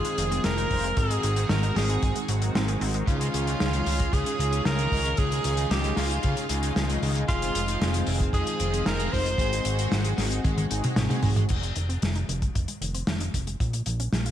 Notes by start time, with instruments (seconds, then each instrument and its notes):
Already playing: analog synth pad D#3 G#3 C4 F4, analog polysynth G#3 C4 D#4 F4 G#4, string machine G#4, tenor saxophone G#4
0.05 synth arpeggio sound G#3, closed hi-hat
0.18 analog synth bass F1, synth arpeggio sound D#3, closed hi-hat
0.31 synth arpeggio sound C4, closed hi-hat
0.44 analog synth bass F1, synth arpeggio sound D#3, string machine A#4, tenor saxophone A#4, snare, closed hi-hat
0.58 synth arpeggio sound D#4, closed hi-hat
0.71 analog synth bass F1, synth arpeggio sound D#3, analog polysynth G#3 C4 D#4 F4 C5, kick, open hi-hat
0.84 synth arpeggio sound G#3, closed hi-hat
0.97 analog synth bass G#1, synth arpeggio sound D#3, analog synth pad D#3 C4 F#4, analog polysynth G#3 C4 D#4 F#4 G#4, string machine G#4, tenor saxophone G#4, kick, closed hi-hat
1.10 synth arpeggio sound G#3, closed hi-hat
1.23 analog synth bass G#1, synth arpeggio sound D#3, closed hi-hat
1.36 synth arpeggio sound C4, closed hi-hat
1.49 analog synth bass G#1, synth arpeggio sound D#3, tenor saxophone A#4, string machine A#4, snare, closed hi-hat
1.63 synth arpeggio sound D#4, closed hi-hat
1.76 analog synth bass G#1, synth arpeggio sound D#3, string machine G#4, tenor saxophone G#4, snare, open hi-hat
1.89 synth arpeggio sound G#3, closed hi-hat
2.03 analog synth bass G#1, synth arpeggio sound D#3, kick, closed hi-hat
2.16 synth arpeggio sound G#3, closed hi-hat
2.28 analog synth bass G#1, synth arpeggio sound F#3, closed hi-hat
2.42 synth arpeggio sound F#3, analog polysynth G#3 C4 D#4 F#4 A#4, closed hi-hat
2.55 analog synth bass G#1, synth arpeggio sound C4, snare, closed hi-hat
2.68 synth arpeggio sound G#4, closed hi-hat
2.81 analog synth bass G#1, synth arpeggio sound C4, open hi-hat
2.94 synth arpeggio sound G#3, closed hi-hat
3.07 analog synth bass C#2, overdriven electric guitar C#3, analog polysynth G#3 C#4 D#4 F4 G#4, analog synth pad C#4 F4, tenor saxophone F4, string machine F4, kick, closed hi-hat
3.21 overdriven electric guitar G#3, closed hi-hat
3.34 analog synth bass C#2, overdriven electric guitar C#4, closed hi-hat
3.47 overdriven electric guitar C#3, closed hi-hat
3.60 analog synth bass C#2, snare, closed hi-hat
3.73 overdriven electric guitar C#3, closed hi-hat
3.86 analog synth bass C#2, overdriven electric guitar G#3, open hi-hat
4.00 overdriven electric guitar G#3, kick, closed hi-hat
4.13 analog synth bass C#2, overdriven electric guitar C#3, tenor saxophone G#4, string machine G#4, kick, closed hi-hat
4.26 overdriven electric guitar C#3, closed hi-hat
4.39 analog synth bass C#2, overdriven electric guitar G#3, closed hi-hat
4.52 overdriven electric guitar C#3, closed hi-hat
4.65 analog synth bass C#2, tenor saxophone A#4, string machine A#4, snare, closed hi-hat
4.79 overdriven electric guitar C#3, closed hi-hat
4.92 analog synth bass C#2, overdriven electric guitar C#3, analog polysynth G#3 C#4 D#4 F4 C#5, kick, open hi-hat
5.05 overdriven electric guitar C#3, closed hi-hat
5.17 analog synth bass C#2, overdriven electric guitar C#3, analog polysynth G#3 C#4 D#4 F4 G#4, analog synth pad D#4, tenor saxophone G#4, string machine G#4, kick, closed hi-hat
5.31 overdriven electric guitar G#3, closed hi-hat
5.44 analog synth bass C#2, overdriven electric guitar C#4, closed hi-hat
5.57 overdriven electric guitar C#3, closed hi-hat
5.71 analog synth bass C#2, tenor saxophone G4, string machine G4, snare, closed hi-hat
5.84 overdriven electric guitar C#3, closed hi-hat
5.97 analog synth bass C#2, overdriven electric guitar G#3, tenor saxophone F4, string machine F4, snare, open hi-hat
6.10 overdriven electric guitar G#3, closed hi-hat
6.23 analog synth bass C#2, overdriven electric guitar C#3, kick, closed hi-hat
6.37 overdriven electric guitar C#3, closed hi-hat
6.49 analog synth bass C#2, analog polysynth G#3 C#4 D#4 F4 G#4, overdriven electric guitar G#3, closed hi-hat
6.63 overdriven electric guitar C#3, closed hi-hat
6.76 analog synth bass C#2, snare, closed hi-hat
6.89 overdriven electric guitar C#3, closed hi-hat
7.02 analog synth bass C#2, overdriven electric guitar C#3, open hi-hat
7.15 overdriven electric guitar C#3, closed hi-hat
7.29 analog synth bass F1, overdriven electric guitar F3, analog synth pad G#3 C4, analog polysynth G#3 C4 D#4 F4 G#4, tenor saxophone F4, string machine F4, kick, closed hi-hat
7.42 overdriven electric guitar C4, closed hi-hat
7.55 analog synth bass F1, overdriven electric guitar F4, closed hi-hat
7.68 overdriven electric guitar F3, closed hi-hat
7.81 analog synth bass F1, snare, closed hi-hat
7.94 overdriven electric guitar F3, closed hi-hat
8.07 analog synth bass F1, overdriven electric guitar C4, open hi-hat
8.20 overdriven electric guitar C4, kick, closed hi-hat
8.33 analog synth bass F1, overdriven electric guitar F3, tenor saxophone G#4, string machine G#4, kick, closed hi-hat
8.47 overdriven electric guitar F3, closed hi-hat
8.60 analog synth bass F1, overdriven electric guitar C4, closed hi-hat
8.73 overdriven electric guitar F3, closed hi-hat
8.86 analog synth bass F1, tenor saxophone A#4, string machine A#4, snare, closed hi-hat
9.00 overdriven electric guitar F3, closed hi-hat
9.12 analog synth bass F1, overdriven electric guitar F3, analog polysynth G#3 C4 D#4 F4 C5, tenor saxophone C5, string machine C5, kick, open hi-hat
9.26 overdriven electric guitar F3, closed hi-hat
9.38 analog synth bass G#1, overdriven electric guitar G#3, analog polysynth G#3 C4 D#4 F#4 G#4, analog synth pad F#4, kick, closed hi-hat
9.52 overdriven electric guitar D#4, closed hi-hat
9.65 analog synth bass G#1, overdriven electric guitar G#4, closed hi-hat
9.79 overdriven electric guitar G#3, closed hi-hat
9.92 analog synth bass G#1, snare, closed hi-hat
10.05 overdriven electric guitar G#3, closed hi-hat
10.18 analog synth bass G#1, overdriven electric guitar D#4, snare, open hi-hat
10.31 overdriven electric guitar D#4, closed hi-hat
10.44 analog synth bass G#1, overdriven electric guitar G#3, kick, closed hi-hat, high tom
10.58 overdriven electric guitar G#3, closed hi-hat, high tom
10.71 analog synth bass G#1, analog polysynth G#3 C4 D#4 F#4 G#4, overdriven electric guitar D#4, closed hi-hat
10.84 overdriven electric guitar G#3, closed hi-hat, mid tom
10.96 analog synth bass G#1, snare, closed hi-hat, mid tom
11.10 overdriven electric guitar G#3, closed hi-hat, mid tom
11.23 analog synth bass G#1, overdriven electric guitar G#3, kick, mid tom, open hi-hat
11.36 overdriven electric guitar G#3, closed hi-hat, mid tom
11.49 analog synth bass F1, synth arpeggio sound D#3, kick, closed hi-hat, crash
11.63 synth arpeggio sound G#3, closed hi-hat
11.76 analog synth bass F1, synth arpeggio sound D#3, closed hi-hat
11.89 synth arpeggio sound C4, closed hi-hat
12.02 analog synth bass F1, synth arpeggio sound D#3, snare, closed hi-hat
12.15 synth arpeggio sound D#4, closed hi-hat
12.29 analog synth bass F1, synth arpeggio sound D#3, closed hi-hat
12.42 synth arpeggio sound G#3, kick, closed hi-hat
12.55 analog synth bass F1, synth arpeggio sound D#3, kick, closed hi-hat
12.68 synth arpeggio sound G#3, closed hi-hat
12.81 analog synth bass F1, synth arpeggio sound D#3, closed hi-hat
12.95 synth arpeggio sound C4, closed hi-hat
13.07 analog synth bass F1, synth arpeggio sound D#3, snare, closed hi-hat
13.20 synth arpeggio sound D#4, closed hi-hat
13.34 analog synth bass F1, synth arpeggio sound D#3, kick, closed hi-hat
13.47 synth arpeggio sound G#3, closed hi-hat
13.60 analog synth bass A#1, synth arpeggio sound F3, kick, closed hi-hat
13.73 synth arpeggio sound A#3, closed hi-hat
13.86 analog synth bass A#1, synth arpeggio sound F3, closed hi-hat
14.00 synth arpeggio sound C#4, closed hi-hat
14.13 analog synth bass A#1, synth arpeggio sound F3, snare, closed hi-hat
14.26 synth arpeggio sound F4, closed hi-hat